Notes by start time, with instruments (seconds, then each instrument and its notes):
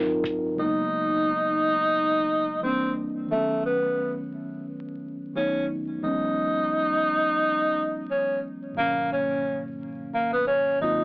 Already playing: tine electric piano G#2 F#3 C4 D#4 F4 A#4
0.24 kick, closed hi-hat
0.54 tine electric piano C#3 F#3 G#3
0.59 tine electric piano A#3 B3 D#4, tenor saxophone D#4
2.61 tine electric piano E3 G3 A#3 C4 D4, tenor saxophone C4
3.27 tine electric piano D#3 F#3 A3
3.31 tenor saxophone A3, tine electric piano B3 C#4
3.66 tenor saxophone B3
5.34 tine electric piano D#3 F#3 A3 B3 D#4, tenor saxophone C#4
6.00 tine electric piano E3 F#3 G#3, tenor saxophone D#4
6.05 tine electric piano B3 C#4
8.10 tenor saxophone C#4
8.73 tine electric piano G#2 D#3 F#3
8.77 tine electric piano B2 A#3 C#4, tenor saxophone A#3
9.12 tenor saxophone C#4
10.14 tenor saxophone A#3
10.33 tenor saxophone B3
10.47 tenor saxophone C#4
10.80 tine electric piano G#2 D#3 F#3 A#3 C4 F4, tenor saxophone D#4